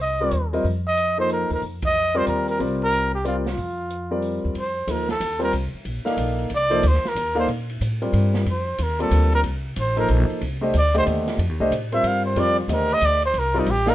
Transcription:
Already playing: upright bass C2
0.02 trumpet D#5
0.20 grand piano G3 C4 F4 A#4 D5
0.31 upright bass D#2, closed hi-hat
0.53 grand piano G3 C4 F4 A#4 D#5, open hi-hat
0.64 upright bass F2, open hi-hat
0.87 trumpet D#5
0.97 closed hi-hat
1.17 grand piano F3 A#3 D#4 A4 C5, trumpet C5
1.29 trumpet A#4, closed hi-hat
1.50 upright bass D#2, trumpet A#4, open hi-hat
1.62 upright bass F2, open hi-hat
1.82 trumpet D#5, kick, ride
2.14 grand piano G3 C4 F4 A#4 D5, trumpet C5
2.27 upright bass D#2, trumpet A#4, closed hi-hat
2.48 trumpet A#4, open hi-hat
2.59 upright bass C2, grand piano G3 C4 F4 A#4 D5, open hi-hat
2.84 trumpet A#4
2.92 closed hi-hat
3.15 trumpet G4
3.24 grand piano G3 C4 F4 A#4 D5, trumpet F4, closed hi-hat
3.46 trumpet F4, snare, open hi-hat
3.58 upright bass F2, open hi-hat
3.90 closed hi-hat
4.11 grand piano G3 C4 F4 A#4 D5
4.22 open hi-hat
4.45 upright bass D#2
4.55 upright bass F2, ride
4.60 trumpet C5
4.87 upright bass D2, grand piano F3 A#3 D#4 A4 C5, trumpet A#4, hi-hat pedal, ride
5.09 trumpet A4, snare
5.20 upright bass D#2, hi-hat pedal, ride
5.39 grand piano G3 C4 F4 A#4 C5, ride
5.43 trumpet A#4
5.53 upright bass C2, ride
5.74 muted upright bass stroke
5.85 upright bass A#1, ride
6.05 grand piano A#3 D#4 A4 D5 F5, snare
6.17 upright bass A#1, hi-hat pedal, ride
6.39 ride
6.50 upright bass C2, ride
6.55 trumpet D5
6.70 grand piano F3 A#3 D#4 A4 C5, ride
6.83 upright bass D2, hi-hat pedal, ride
6.87 trumpet C5
6.94 snare
7.04 muted upright bass stroke, snare
7.08 trumpet A#4
7.15 upright bass D#2, hi-hat pedal, ride
7.35 grand piano A#3 D#4 A4 D5 F5
7.39 trumpet C5
7.47 upright bass A#2, ride
7.70 ride
7.81 upright bass A2, hi-hat pedal, ride
8.02 grand piano G3 C4 F4 A#4 D5, ride
8.13 upright bass G2, ride
8.34 snare
8.46 upright bass F2, ride
8.51 trumpet C5
8.78 upright bass D#2, hi-hat pedal, ride
8.83 trumpet A#4
8.99 grand piano G3 A#3 C4 F4 D5, trumpet A4, ride
9.11 upright bass D2, hi-hat pedal, ride
9.32 trumpet A#4, ride
9.43 upright bass C2, ride
9.76 upright bass A1, hi-hat pedal, ride
9.80 trumpet C5
9.96 grand piano F3 A#3 D#4 A4 C5, trumpet A#4, ride
10.08 upright bass A#1, ride
10.30 muted upright bass stroke, ride
10.41 upright bass C2, ride
10.61 grand piano A3 D4 G4 C5 D#5
10.74 upright bass D2, hi-hat pedal, ride
10.78 trumpet D5
10.94 grand piano D3 A3 G4 C5 D#5, trumpet C5, ride
11.07 upright bass D#2, hi-hat pedal, ride
11.27 snare, ride
11.38 upright bass F2, ride
11.49 upright bass D#2
11.60 upright bass C2, grand piano A3 D4 G4 C5 D#5
11.71 upright bass A2, hi-hat pedal, ride
11.92 grand piano G3 C4 F4 A#4 C5, trumpet E5, ride
12.04 upright bass G2, trumpet F5, ride
12.26 trumpet C5
12.36 upright bass F2, grand piano G3 C4 F4 A#4 D5, trumpet D5, ride
12.60 trumpet F4
12.68 upright bass D#2, grand piano D3 A3 G4 C5 D#5, hi-hat pedal, ride
12.73 trumpet A#4
12.89 ride
12.94 trumpet D#5
13.01 upright bass D2, hi-hat pedal, ride
13.06 trumpet D5
13.22 trumpet C5, ride
13.34 upright bass C2, ride
13.39 trumpet A#4
13.54 grand piano G3 C4 F4 A#4 D5
13.59 trumpet D#4
13.66 upright bass A1, hi-hat pedal, ride
13.71 trumpet G4
13.86 grand piano A#3 D#4 A4 D5 F5, trumpet A#4, snare, ride

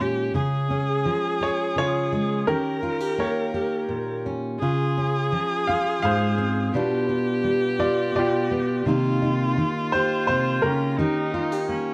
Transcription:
Already playing: steel-string acoustic guitar A#2 D#3 G#3
0.01 steel-string acoustic guitar C#4, viola G4
0.34 steel-string acoustic guitar C#3 G#4, viola G#4
0.70 steel-string acoustic guitar C#4
1.05 steel-string acoustic guitar F3
1.41 steel-string acoustic guitar G#4, grand piano C#5
1.76 steel-string acoustic guitar C#3, grand piano F4 G#4 C#5
2.12 steel-string acoustic guitar G#3
2.47 steel-string acoustic guitar D#3 G4, grand piano C#4 G4 A#4, viola A#4
2.83 steel-string acoustic guitar F4
3.00 steel-string acoustic guitar G4
3.18 steel-string acoustic guitar A#3, grand piano G4 A#4 C#5
3.54 steel-string acoustic guitar G4
3.89 steel-string acoustic guitar A#2
4.26 steel-string acoustic guitar C#4
4.59 steel-string acoustic guitar C#3 F4, viola G#4
4.98 steel-string acoustic guitar C#4
5.32 steel-string acoustic guitar F3
5.67 steel-string acoustic guitar F4, grand piano F5
6.02 steel-string acoustic guitar G#2, grand piano G#4 C5 F5
6.38 steel-string acoustic guitar C4
6.72 steel-string acoustic guitar B2 G3 B3 D4, viola G4
6.77 steel-string acoustic guitar F4
7.09 steel-string acoustic guitar D4
7.44 steel-string acoustic guitar G3
7.79 steel-string acoustic guitar F4, grand piano D5
8.15 steel-string acoustic guitar B2, grand piano F4 G4 D5
8.51 steel-string acoustic guitar B3
8.86 steel-string acoustic guitar C3 D#3 A#3 D#4 G4, viola F4
9.22 steel-string acoustic guitar D#4
9.57 steel-string acoustic guitar D#3
9.92 steel-string acoustic guitar G4, grand piano C5
10.27 steel-string acoustic guitar C3, grand piano C5
10.62 steel-string acoustic guitar C#3, grand piano C#4 G4 A#4
10.98 steel-string acoustic guitar D#3 G4, viola D#4
11.34 steel-string acoustic guitar F4
11.52 steel-string acoustic guitar G4
11.69 steel-string acoustic guitar A#3, viola C#4

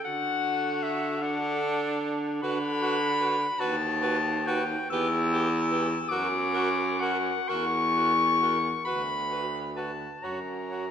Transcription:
Already playing: alto saxophone A4
0.04 baritone saxophone D3, tenor saxophone F#4, clarinet F#5
0.83 clarinet E5
1.22 tenor saxophone D4, alto saxophone A4, clarinet F#5
2.42 baritone saxophone D3, tenor saxophone F#4, alto saxophone B4, clarinet B5
2.81 tenor saxophone F#4, alto saxophone B4
3.20 tenor saxophone F#4, alto saxophone B4
3.59 baritone saxophone D#2, tenor saxophone F#4, alto saxophone B4, clarinet A5
4.02 tenor saxophone F#4, alto saxophone B4
4.46 tenor saxophone F#4, alto saxophone B4, clarinet G5
4.90 baritone saxophone E2, tenor saxophone G4, alto saxophone B4, clarinet E6
5.33 tenor saxophone G4, alto saxophone B4
5.71 tenor saxophone G4, alto saxophone B4
6.09 baritone saxophone F#2, tenor saxophone F#4, alto saxophone A#4, clarinet D6
6.53 tenor saxophone F#4, alto saxophone A#4
7.00 tenor saxophone F#4, alto saxophone A#4, clarinet F#5
7.49 baritone saxophone E2, tenor saxophone F#4, alto saxophone A#4, clarinet C#6
7.97 tenor saxophone F#4, alto saxophone A#4
8.41 tenor saxophone F#4, alto saxophone A#4
8.85 baritone saxophone D2, tenor saxophone F#4, alto saxophone B4, clarinet B5
9.31 tenor saxophone F#4, alto saxophone B4
9.76 tenor saxophone F#4, alto saxophone B4, clarinet A5
10.23 baritone saxophone F#2, tenor saxophone F#4, alto saxophone C#5, clarinet A#5
10.70 tenor saxophone F#4, alto saxophone C#5

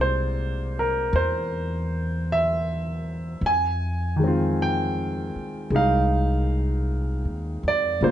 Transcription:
Already playing: upright bass C2, grand piano C3 G#3 A#3 E4 D5
0.01 grand piano C5
0.79 grand piano A#4
1.13 upright bass E2, grand piano C5
2.32 grand piano E5
3.41 upright bass F2
3.46 grand piano G#5
4.16 grand piano D#3 G#3
4.24 grand piano C4 F4
4.62 grand piano G5
5.36 muted upright bass stroke
5.70 upright bass C2, grand piano G#3
5.75 grand piano D#4 F5
7.25 upright bass D#2
7.63 upright bass F2
7.68 grand piano D5
8.01 upright bass A#1, grand piano C#3 G#3 A#3 F4 C5

